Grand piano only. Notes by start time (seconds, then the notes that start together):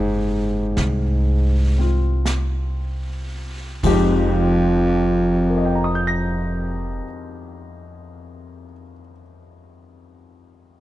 Already playing: G#3 C4 D#4 G4
1.78 C4 F4
3.84 F2 F3 G#3 D#4 G4
5.50 A#4
5.58 D#5
5.65 G5
5.75 A#5
5.84 D#6
5.95 G6
6.07 A#6